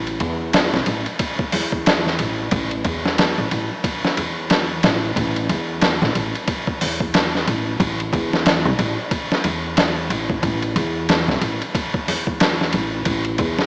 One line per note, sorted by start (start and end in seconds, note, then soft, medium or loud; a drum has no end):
0.00 0.17 A1 loud
0.07 ride soft
0.20 0.69 E2 loud
0.20 ride medium
0.53 snare loud
0.53 ride medium
0.73 0.85 C2 medium
0.73 snare soft
0.86 1.04 A1 medium
0.86 ride medium
1.06 ride soft
1.19 kick loud
1.19 ride medium
1.39 kick loud
1.52 2.16 E2 medium
1.52 open hi-hat medium
1.72 kick medium
1.86 snare loud
1.86 ride medium
2.06 snare soft
2.19 2.49 A1 medium
2.19 ride medium
2.51 2.82 A1 loud
2.51 kick loud
2.51 ride medium
2.71 ride soft
2.85 3.34 E2 medium
2.85 kick medium
2.85 ride medium
3.06 snare medium
3.18 snare loud
3.18 ride medium
3.38 3.49 A1 medium
3.51 3.68 A1 medium
3.51 ride medium
3.84 kick loud
3.84 ride medium
4.05 snare medium
4.17 4.80 E2 medium
4.17 ride medium
4.50 snare loud
4.50 ride medium
4.83 5.13 A1 medium
4.83 snare loud
4.83 ride medium
5.16 5.46 A1 medium
5.16 kick loud
5.16 ride medium
5.36 ride soft
5.49 5.98 E2 medium
5.49 ride medium
5.81 snare loud
5.81 ride medium
6.02 6.13 A1 loud
6.02 snare soft
6.15 6.32 A1 medium
6.15 ride medium
6.35 ride soft
6.48 kick loud
6.48 ride medium
6.67 kick loud
6.81 7.44 E2 medium
6.81 open hi-hat medium
7.00 kick medium
7.14 snare loud
7.14 ride medium
7.35 snare soft
7.47 7.76 A1 medium
7.47 ride medium
7.80 8.09 A1 medium
7.80 kick loud
7.80 ride medium
8.00 ride soft
8.13 8.61 E2 loud
8.13 kick loud
8.13 ride medium
8.33 snare medium
8.46 snare loud
8.46 ride medium
8.65 8.77 C2 loud
8.79 8.95 A1 medium
8.79 ride medium
9.11 kick loud
9.11 ride medium
9.32 snare medium
9.44 10.08 E2 medium
9.44 ride medium
9.77 snare loud
9.77 ride medium
10.10 10.40 A1 medium
10.10 ride medium
10.30 kick loud
10.43 10.73 A1 medium
10.43 kick loud
10.43 ride medium
10.62 ride soft
10.76 11.24 E2 loud
10.76 ride medium
11.09 snare loud
11.09 ride medium
11.28 11.40 C2 medium
11.28 snare soft
11.41 11.59 A1 medium
11.41 ride medium
11.62 ride soft
11.75 kick loud
11.75 ride medium
11.94 kick loud
12.08 12.71 E2 medium
12.08 open hi-hat medium
12.27 kick medium
12.40 snare loud
12.40 ride medium
12.61 snare soft
12.73 13.03 A1 medium
12.73 ride medium
13.05 13.36 A1 loud
13.05 kick loud
13.05 ride medium
13.25 ride soft
13.38 13.66 E2 loud
13.38 kick medium
13.38 ride medium
13.59 snare medium